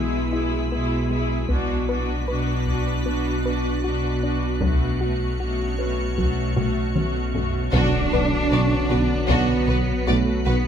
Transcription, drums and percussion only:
1.50 taiko
2.67 taiko
4.62 taiko
6.18 taiko
6.57 taiko low-mid
6.96 taiko mid
7.35 taiko low
7.73 taiko
9.29 taiko

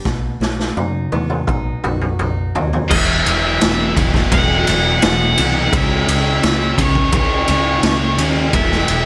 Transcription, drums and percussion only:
0.05 kick, snare
0.42 snare
0.59 snare
0.77 high tom
1.12 high tom
1.30 mid tom
1.47 kick, mid tom
1.84 mid tom
2.01 mid tom
2.19 mid tom
2.55 floor tom
2.73 floor tom
2.91 kick, crash
3.26 ride
3.61 snare, ride
3.97 kick, ride
4.14 kick, snare
4.32 kick, ride
4.67 ride
5.02 snare, ride
5.38 ride
5.73 kick, ride
6.08 ride
6.43 snare, ride
6.78 kick, ride
6.95 kick
7.12 kick, ride
7.48 ride
7.83 snare, ride
8.18 ride
8.53 kick, ride
8.71 snare
8.88 ride

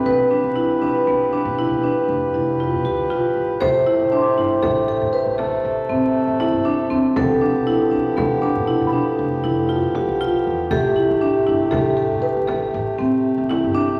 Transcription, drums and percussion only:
3.62 frame drum
4.63 frame drum
5.39 frame drum
6.40 frame drum
6.91 frame drum
7.16 frame drum
8.18 frame drum
9.95 frame drum
10.45 frame drum
10.71 frame drum
11.72 frame drum
12.48 frame drum
13.51 frame drum

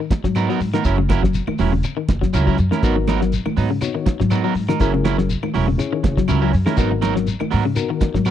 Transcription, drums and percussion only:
0.10 kick, snare, closed hi-hat, high conga, shekere
0.24 kick, snare
0.35 closed hi-hat, claves, shekere
0.49 snare
0.61 snare, open hi-hat, shekere
0.73 snare, closed hi-hat, high conga, claves
0.84 kick, closed hi-hat, shekere
0.98 high conga
1.09 kick, snare, closed hi-hat, high conga, claves, shekere
1.23 kick, snare
1.34 snare, closed hi-hat, high conga, shekere
1.47 high conga, claves
1.58 open hi-hat, high conga, shekere
1.83 closed hi-hat, high conga, claves, shekere
2.08 kick, snare, closed hi-hat, high conga, shekere
2.22 kick, snare
2.33 closed hi-hat, claves, shekere
2.47 kick
2.58 closed hi-hat, shekere
2.72 snare, high conga, claves
2.83 kick, closed hi-hat, high conga, shekere
3.07 snare, closed hi-hat, high conga, claves, shekere
3.21 snare
3.32 closed hi-hat, high conga, shekere
3.46 high conga, claves
3.57 open hi-hat, high conga, shekere
3.81 closed hi-hat, claves, shekere
4.06 kick, snare, closed hi-hat, high conga, shekere
4.20 kick, snare
4.30 closed hi-hat, claves, shekere
4.55 open hi-hat, shekere
4.68 snare, closed hi-hat, high conga, claves
4.80 kick, closed hi-hat, high conga, shekere
4.94 high conga
5.05 snare, closed hi-hat, high conga, claves, shekere
5.18 snare
5.29 closed hi-hat, high conga, shekere
5.43 high conga, claves
5.54 open hi-hat, shekere
5.79 closed hi-hat, high conga, claves, shekere
6.04 kick, snare, closed hi-hat, high conga, shekere
6.17 kick, snare
6.28 closed hi-hat, claves, shekere
6.53 snare, open hi-hat, shekere
6.66 snare, high conga, claves
6.77 kick, closed hi-hat, high conga, shekere
7.02 snare, closed hi-hat, high conga, claves, shekere
7.16 snare
7.27 closed hi-hat, high conga, shekere
7.40 high conga, claves
7.51 open hi-hat, shekere
7.76 closed hi-hat, claves, shekere
8.01 kick, snare, closed hi-hat, high conga, shekere
8.14 kick, snare
8.25 closed hi-hat, claves, shekere

